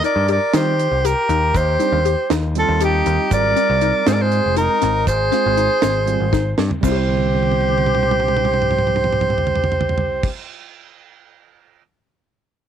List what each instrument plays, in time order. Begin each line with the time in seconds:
0.04 synth arpeggio sound D#4, flugelhorn A#4, soprano saxophone D5, closed hi-hat, shaker
0.16 picked electric bass G2
0.28 synth arpeggio sound G4, flugelhorn A#4, soprano saxophone D5, closed hi-hat
0.54 picked electric bass D#3, tine electric piano G3 C4 F4, synth arpeggio sound D#4, flugelhorn G4, soprano saxophone C5, snare, closed hi-hat, shaker
0.79 closed hi-hat
0.91 picked electric bass C2
1.05 synth arpeggio sound G4, flugelhorn G4, soprano saxophone A#4, closed hi-hat, shaker
1.29 picked electric bass D#2, synth arpeggio sound D#4, closed hi-hat
1.54 picked electric bass D#2, flugelhorn G4, soprano saxophone C5, kick, closed hi-hat, shaker
1.79 tine electric piano G3 C4 D4, synth arpeggio sound D#4, closed hi-hat, shaker
1.92 picked electric bass D#2
2.05 synth arpeggio sound G4, closed hi-hat
2.30 picked electric bass D#2, synth arpeggio sound D#4, snare, closed hi-hat, shaker
2.55 tine electric piano G3 C4 F4, flugelhorn F4, soprano saxophone A4, closed hi-hat
2.68 picked electric bass D#2
2.81 flugelhorn D#4, synth arpeggio sound G4, soprano saxophone G4, closed hi-hat, shaker
3.06 picked electric bass D#2, synth arpeggio sound D#4, closed hi-hat
3.30 picked electric bass G#1, tine electric piano G3 C4 F4, flugelhorn A#4, soprano saxophone D5, kick, closed hi-hat, shaker
3.56 synth arpeggio sound C4, closed hi-hat, shaker
3.70 picked electric bass C2
3.81 synth arpeggio sound D#4, closed hi-hat
4.06 picked electric bass G#2, tine electric piano G#3 C4 F4, synth arpeggio sound C4, flugelhorn G#4, soprano saxophone C5, snare, closed hi-hat, shaker
4.13 flugelhorn A#4, soprano saxophone D5
4.21 flugelhorn G#4, soprano saxophone C5
4.32 closed hi-hat
4.46 picked electric bass F1
4.56 synth arpeggio sound D#4, flugelhorn D#4, soprano saxophone A#4, closed hi-hat, shaker
4.82 picked electric bass G#1, synth arpeggio sound C4, snare, closed hi-hat
5.07 picked electric bass G#1, flugelhorn G#4, soprano saxophone C5, kick, closed hi-hat, shaker
5.32 tine electric piano G#3 C4 F4, synth arpeggio sound C4, snare, closed hi-hat
5.46 picked electric bass G#1
5.57 synth arpeggio sound D#4, closed hi-hat
5.82 picked electric bass G#1, synth arpeggio sound C4, snare, closed hi-hat, shaker
6.06 tine electric piano G3 C4 F4, closed hi-hat
6.20 picked electric bass G#1
6.33 synth arpeggio sound D#4, kick, snare, shaker
6.58 picked electric bass G2, synth arpeggio sound C4, snare
6.71 floor tom
6.81 picked electric bass C2, tine electric piano G3 C4, synth arpeggio sound C4, flugelhorn G4, soprano saxophone C5, kick, crash, shaker
6.86 tine electric piano E4, synth arpeggio sound E4
6.92 synth arpeggio sound G4
6.96 synth arpeggio sound C5
7.08 high tom
7.17 high tom
7.26 high tom
7.35 high tom
7.43 high tom
7.52 high tom
7.61 high tom
7.69 high tom
7.78 high tom
7.86 mid tom
7.95 mid tom
8.03 mid tom
8.11 mid tom
8.20 mid tom
8.28 mid tom
8.37 mid tom
8.45 mid tom
8.54 mid tom
8.62 mid tom
8.71 mid tom
8.79 mid tom
8.87 mid tom
8.96 mid tom
9.04 mid tom
9.13 mid tom
9.21 mid tom
9.30 mid tom
9.38 floor tom
9.47 floor tom
9.55 floor tom
9.64 floor tom
9.72 floor tom
9.81 floor tom
9.89 floor tom
9.98 floor tom
10.23 kick, crash